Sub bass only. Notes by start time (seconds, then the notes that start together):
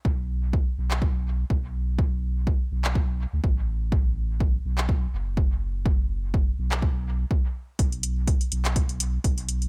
0.05 B1
0.78 B1
1.50 B1
2.71 B1
3.33 D2
3.44 A1
4.65 B1
5.13 F#1
6.58 B1
7.79 B1
8.52 B1
9.24 B1